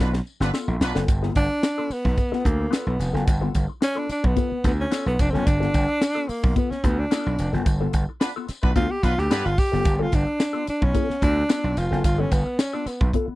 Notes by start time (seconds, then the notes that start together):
0.00 B1 B3 D4 F4 B4, muted clean electric guitar stroke, tambourine
0.13 muted clean electric guitar stroke, snare
0.27 tambourine
0.40 G1 B3 D4 F4 A4 B4, snare
0.53 B3 F4 A4, snare, tambourine
0.68 A#1
0.81 B1 B3 D4 F4 B4, snare, tambourine
0.95 F#1 B3 F4 A4, snare
1.08 G1, muted clean electric guitar stroke, kick, closed hi-hat, tambourine
1.23 B3 F4 A4, snare
1.35 G1 D4, muted clean electric guitar stroke, kick, closed hi-hat, tambourine
1.50 muted clean electric guitar stroke
1.63 muted clean electric guitar stroke, snare, closed hi-hat, tambourine
1.78 B3 F4 A4
1.90 B3, muted slap bass stroke, muted clean electric guitar stroke, open hi-hat, tambourine
2.04 B1, muted clean electric guitar stroke, kick
2.18 muted clean electric guitar stroke, kick, closed hi-hat, tambourine
2.32 B3 F4 A4, muted slap bass stroke, snare
2.45 D2 A#3, kick, closed hi-hat
2.59 muted clean electric guitar stroke
2.71 B3 F4 A4, snare, closed hi-hat, tambourine
2.87 B1 B3
2.98 F1, muted clean electric guitar stroke, snare, closed hi-hat, tambourine
3.13 F#1 B3 F4 A4, snare
3.27 G1, muted clean electric guitar stroke, kick, closed hi-hat, tambourine
3.41 B3 F4 A4
3.54 G1, muted clean electric guitar stroke, kick, closed hi-hat, tambourine
3.68 muted clean electric guitar stroke
3.81 C#4, muted clean electric guitar stroke, snare, closed hi-hat, tambourine
3.95 B3 D4 F4 A4
4.09 D4, muted clean electric guitar stroke, muted slap bass stroke, snare, closed hi-hat, tambourine
4.23 B1 B3, muted clean electric guitar stroke, kick
4.36 B3 F4 A4, kick, closed hi-hat, tambourine
4.51 muted clean electric guitar stroke, muted slap bass stroke
4.64 D2 B3 F4 B4, kick, snare, closed hi-hat, tambourine
4.79 C#4, muted clean electric guitar stroke
4.91 B3 F4 A4, snare, closed hi-hat, tambourine
5.06 B1 B3, snare
5.19 F1 D4, muted clean electric guitar stroke, kick, closed hi-hat, tambourine
5.30 F#1 C4 C#4 F4 A4
5.34 B3, snare
5.46 G1 D4, muted clean electric guitar stroke, kick, closed hi-hat, tambourine
5.60 B3 F4 A4, snare
5.73 G1, muted clean electric guitar stroke, kick, closed hi-hat, tambourine
5.88 muted clean electric guitar stroke
6.01 muted clean electric guitar stroke, snare, closed hi-hat, tambourine
6.15 B3 F4 A4
6.29 A#3, muted clean electric guitar stroke, muted slap bass stroke, open hi-hat, tambourine
6.43 B1, muted clean electric guitar stroke, kick
6.56 B3 F4 A4, kick, closed hi-hat, tambourine
6.71 C#4, muted clean electric guitar stroke, muted slap bass stroke, snare
6.84 D2 B3 F4 B4, kick, closed hi-hat, tambourine
6.98 D4, muted clean electric guitar stroke
7.11 B3 F4 A4, snare, closed hi-hat, tambourine
7.26 B1
7.39 F1, muted clean electric guitar stroke, snare, closed hi-hat, tambourine
7.53 F#1 B3 F4 A4, snare
7.66 G1, muted clean electric guitar stroke, kick, closed hi-hat, tambourine
7.81 B3 F4 A4
7.93 G1, muted clean electric guitar stroke, kick, closed hi-hat, tambourine
8.09 muted clean electric guitar stroke
8.20 B3 D4 F4 B4, muted clean electric guitar stroke, snare, closed hi-hat, tambourine
8.36 B3 F4 A4
8.48 muted clean electric guitar stroke, muted slap bass stroke, snare, closed hi-hat, tambourine
8.62 B1 B3 D4 F4 B4, muted clean electric guitar stroke, kick
8.75 D2 B3 F4 A4, kick, closed hi-hat, tambourine
8.90 G4, muted clean electric guitar stroke
9.02 B1 B3 D4 F4 B4, kick, snare, closed hi-hat
9.18 D2 G4, muted clean electric guitar stroke, snare
9.30 G2 B3 D4 F4 A4 B4, snare, closed hi-hat, tambourine
9.45 G1 F4, snare
9.58 G4, muted clean electric guitar stroke, kick, open hi-hat, tambourine
9.72 F#1 B3 F4 A4, snare
9.85 G1, kick, closed hi-hat, tambourine
9.96 F4 G4 A4
10.01 B3 F4
10.12 G1 D4, muted clean electric guitar stroke, kick, closed hi-hat, tambourine
10.27 muted clean electric guitar stroke
10.39 muted clean electric guitar stroke, snare, closed hi-hat, tambourine
10.53 B3 F4 A4
10.66 D4, muted clean electric guitar stroke, muted slap bass stroke, closed hi-hat, tambourine
10.81 B1 C#4, muted clean electric guitar stroke, kick
10.94 B3 F4 A4, kick, closed hi-hat, tambourine
11.09 muted clean electric guitar stroke, muted slap bass stroke, snare
11.22 D2 B3 D4 F4 B4, kick, closed hi-hat, tambourine
11.36 muted clean electric guitar stroke
11.49 B3 F4 A4, snare, closed hi-hat, tambourine
11.64 B1
11.77 F1 F4, muted clean electric guitar stroke, snare, closed hi-hat, tambourine
11.91 F#1 B3 F4 A4, snare
12.04 G1 F4, muted clean electric guitar stroke, kick, closed hi-hat, tambourine
12.18 B3 C#4 F4 A4
12.31 G1 B3, muted clean electric guitar stroke, kick, closed hi-hat, tambourine
12.46 muted clean electric guitar stroke
12.59 C#4, muted clean electric guitar stroke, snare, closed hi-hat, tambourine
12.73 B3 D4 F4 A4
12.86 B3, muted slap bass stroke, muted clean electric guitar stroke, snare, closed hi-hat, tambourine
13.01 B1, muted clean electric guitar stroke, kick
13.13 B3 F4 A4, kick, closed hi-hat
13.28 muted slap bass stroke, muted clean electric guitar stroke